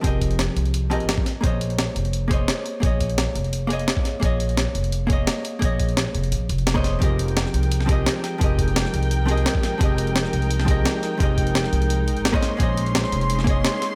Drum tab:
HH |x-xxx-xxx-xxx-x-|x-xxx-xxx-x-x-x-|x-xxx-xxx-xxx-x-|x-xxx-xxx-x-x-x-|
SD |----o-------o-o-|----o-------o---|----o-------o-o-|----o-------o---|
BD |o-o----------o--|o---------o-----|o-o----------o--|o---------o-----|

HH |x-xxx-xxx-xxx-x-|x-xxx-xxx-x-x-x-|x-xxx-xxx-xxx-x-|x-xxx-xxx-x-x-x-|
SD |----o-------o-o-|----oo---o--o-o-|----oo------o-o-|----oo---o--o-o-|
BD |o-o----------o--|o---------o-----|o-o----------o--|o---------o-----|

HH |x-xxx-xxx-xxx-x-|x-xxx-xxx-x-x-x-|
SD |----oo------o-o-|----oo---o--o-o-|
BD |o-o----------o--|o---------o-----|